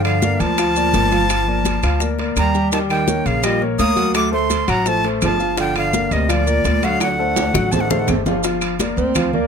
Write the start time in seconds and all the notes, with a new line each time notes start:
Already playing: G2 F3 F4 F5
0.05 D3 F5, high conga, high timbale, claves
0.22 A#3 A#4 D5, high bongo, high conga, maracas
0.40 D2 F3 A5, high bongo, high conga, high timbale, maracas
0.58 F3 F4 F5, high bongo, high conga, high timbale, claves, maracas
0.76 A#3 A#4 D5, high bongo, high conga, maracas
0.94 G1 A#3 A#4 D5, high bongo, low bongo, high conga, high timbale, maracas
1.11 F3 F4 F5, high bongo, high conga, high timbale, maracas
1.29 high bongo, high timbale, claves, maracas
1.47 A#3 A#4 D5, high conga
1.65 high bongo, high conga, high timbale, maracas
1.83 D2 F3 F4 F5, high bongo, high conga, high timbale, claves, maracas
2.00 A#3 A#4 D5, high bongo, high conga, maracas
2.19 A#3 A#4 D5, high bongo, high conga, high timbale
2.36 D#2 G3 A#5, high bongo, low bongo, high conga, high timbale, claves, maracas
2.55 G3 G4 G5, high bongo, high conga, maracas
2.72 D#3 G3 G4 G5 A5, high bongo, high conga, high timbale, maracas
2.90 D#3 G5, high conga, high timbale, claves
3.07 A#3 A#4 C#5, high bongo, high conga, maracas
3.25 A#1 C#3 F5, high bongo, high conga, high timbale, maracas
3.43 A#2 G3 G4 D#5 G5, high bongo, high conga, high timbale, claves, maracas
3.61 A#3 A#4 C#5, high bongo, high conga
3.78 D2 A#3 A#4 C#5 D#6, high bongo, low bongo, high conga, high timbale, maracas
3.96 F#3 F#4 F#5, high bongo, high conga, high timbale, maracas
4.14 A3 D6, high bongo, high conga, high timbale, claves, maracas
4.31 A3 A4 C5 C6, high conga
4.50 high bongo, high conga, high timbale, maracas
4.68 A1 F#3 F#4 F#5 A#5, high bongo, high conga, high timbale, claves, maracas
4.86 F3 A3 A4 C5 A5, high bongo, high conga, maracas
5.04 A3 A4 C5, high bongo, high conga, high timbale
5.22 G1 F3 A5, high bongo, low bongo, high conga, high timbale, low timbale, claves, maracas
5.40 F3 F4 F5, high bongo, high conga, maracas
5.57 D3 F3 F4 F5 G5, high bongo, high conga, high timbale, maracas
5.76 D3 F5, high conga, high timbale, claves
5.93 A#3 A#4 D5, high bongo, high conga, maracas
6.11 D2 C3 D#5, high bongo, high conga, high timbale, maracas
6.28 A#2 F3 F4 D5 F5, high bongo, high conga, high timbale, claves, maracas
6.46 A#3 A#4 D5, high bongo, high conga, maracas
6.64 D2 A#3 A#4 D5, high bongo, low bongo, high conga, high timbale, maracas
6.83 D3 F#3 F#4 F5 F#5, high bongo, high conga, high timbale, maracas
7.00 D3 F#5, high bongo, high conga, high timbale, claves, maracas
7.19 A3 A4 C5, high conga
7.36 high bongo, high conga, high timbale, maracas
7.54 A1 F#3 F#4 F#5, high bongo, low conga, claves, maracas
7.72 F3 A3 A4 C5 A5, low conga, low timbale, maracas
7.80 D#3 F#5
7.90 D3 A3 A4 C5 F5, high bongo, low conga, low timbale
7.99 D#3 F#5
8.07 G1, low bongo, low conga, low timbale, claves, maracas
8.26 F3 F4 F5, low bongo, low conga, low timbale, maracas
8.43 F3 F4 F5, high bongo, high conga, high timbale, maracas
8.61 high conga, high timbale, claves, maracas
8.80 A#3 A#4 D5, high bongo, high conga, high timbale, low timbale, maracas
8.97 D2 C4, high conga, maracas
9.15 F3 F4 F5, high bongo, high conga, low conga, high timbale, claves, maracas
9.33 A#3 A#4 D5, high conga, low conga